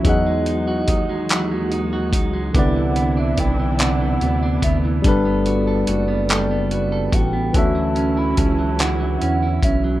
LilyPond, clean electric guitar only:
\new Staff \with { instrumentName = "Clean electric guitar" } { \time 6/8 \key e \mixolydian \tempo 4. = 48 <e fis'>16 gis16 dis'16 fis'16 dis'16 gis16 <e fis'>16 gis16 dis'16 fis'16 dis'16 gis16 | <c d'>16 e16 b16 d'16 b16 e16 <c d'>16 e16 b16 d'16 b16 e16 | <g a'>16 b16 fis'16 a'16 fis'16 b16 <g a'>16 b16 fis'16 a'16 fis'16 b16 | <d e'>16 fis16 cis'16 e'16 cis'16 fis16 <d e'>16 fis16 cis'16 e'16 cis'16 fis16 | }